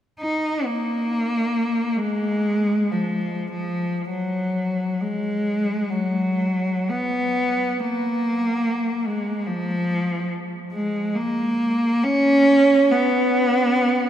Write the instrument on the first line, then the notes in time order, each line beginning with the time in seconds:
cello
0.20 D#4
0.66 A#3
1.96 G#3
2.92 F3
3.52 F3
4.09 F#3
5.01 G#3
5.90 F#3
6.89 B3
7.79 A#3
9.06 G#3
9.47 F3
10.73 G#3
11.15 A#3
12.04 C#4
12.91 B3